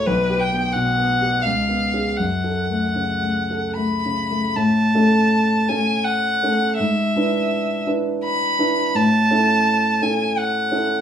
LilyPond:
<<
  \new Staff \with { instrumentName = "Violin" } { \time 3/4 \key fis \minor \tempo 4 = 82 b'8 g''8 fis''4 eis''4 | fis''2 b''4 | \key a \major a''4. gis''8 fis''4 | e''4. r8 b''4 |
a''4. gis''8 fis''4 | }
  \new Staff \with { instrumentName = "Grand piano" } { \time 3/4 \key fis \minor \tuplet 3/2 { b,,8 g'8 b8 b,8 b8 g'8 cis,8 b8 <cis' gis'>8 } | \tuplet 3/2 { fis,8 a'8 a8 cis8 a8 a'8 a8 cis8 a8 } | \key a \major a,8 <a cis' a'>4 <a cis' a'>4 <a cis' a'>8 | gis,8 <d' e' b'>4 <d' e' b'>4 <d' e' b'>8 |
a,8 <cis' e' a'>4 <cis' e' a'>4 <cis' e' a'>8 | }
>>